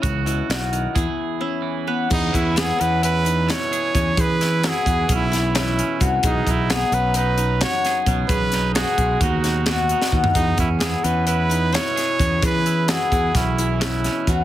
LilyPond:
<<
  \new Staff \with { instrumentName = "Trumpet" } { \time 9/8 \key e \major \tempo 4. = 87 r1 r8 | dis'8 e'8 gis'8 b'8 b'4 cis''4. | b'4 gis'4 e'4 e'4 r8 | dis'8 e'8 gis'8 b'8 b'4 cis''4 r8 |
b'4 gis'4 fis'4 fis'4 r8 | dis'8 e'8 gis'8 b'8 b'4 cis''4. | b'4 gis'4 e'4 e'4 r8 | }
  \new Staff \with { instrumentName = "Qanun" } { \time 9/8 \key e \major cis'8 e'8 fis'4 e'4 cis'4 b8 | gis'4 b8 cis'4 dis'8 e'4 cis'8 | gis'4 fis'8 gis'4 e'8 cis'4 fis'8 | gis'4 b8 cis'4 dis'8 fis'4 cis'8 |
gis'4 fis'8 gis'4 dis'8 b4 fis'8 | gis'4 b8 cis'4 dis'8 e'4 cis'8 | gis'4 fis'8 gis'4 e'8 cis'4 fis'8 | }
  \new Staff \with { instrumentName = "Clean electric guitar" } { \clef bass \time 9/8 \key e \major << { fis'2 gis'4 e'4 b'8 | r8 cis'8 e'4 e'4. gis'4 | r8 e'8 r4 cis'4. cis'4 | r8 dis'8 dis'4 dis'4. gis'4 |
r8 dis'8 fis'4 dis'4. dis'4 | r8 cis'8 e'4 e'4. gis'4 | r8 e'8 e'4 cis'4. cis'4 | } \\ { cis8 b,8 cis8 dis8 e,4. e4 | e,4. e4. b,4 e,8 | e,4. e4. b,4 e,8 | b,4. fis4. fis,4 b,8 |
b,4. gis4. b,4 b,8 | e,4. e4. b,4 e,8 | e,4. e4. b,4 e,8 | } >> }
  \new Staff \with { instrumentName = "Fingered electric bass" } { \clef bass \time 9/8 \key e \major cis,4 b,,4 e,16 r2 r16 | e,8 e,4 e,2 r8 e,8 | e4. e,8 b,,2 c,8 | b,,8 b,,4 b,,2 r8 b,,8 |
b,,4. b,,8 dis,2 dis,8 | e,8 e,4 e,2 r8 e,8 | e4. e,8 b,,2 e,8 | }
  \new DrumStaff \with { instrumentName = "Drums" } \drummode { \time 9/8 <hh bd>8 hh8 <hh sn>8 hh8 <hh bd>4 r4. | <cymc bd>8 <hh bd>8 <hh sn>8 hh8 hh8 hh8 <hh sn>8 hh8 <hh bd>8 | <hh bd>8 <hh sn>8 <hh sn>8 <hh bd>8 <hh bd>8 <hh sn>8 <hh sn>8 hh8 <hh bd>8 | <hh bd>8 <hh bd>8 <hh sn>8 hh8 hh8 hh8 <hh sn>8 <hh sn>8 <hh bd>8 |
<hh bd>8 <hh sn>8 <hh sn>8 <hh bd>8 <hh bd>8 <hh sn>8 <hh sn>8 hh16 sn16 bd16 tomfh16 | <hh bd>8 <hh bd>8 <hh sn>8 hh8 hh8 hh8 <hh sn>8 <hh sn>8 <hh bd>8 | <hh bd>8 hh8 <hh sn>8 <hh bd>8 <hh bd sn>8 hh8 <hh sn>8 <hh sn>8 <hh bd>8 | }
>>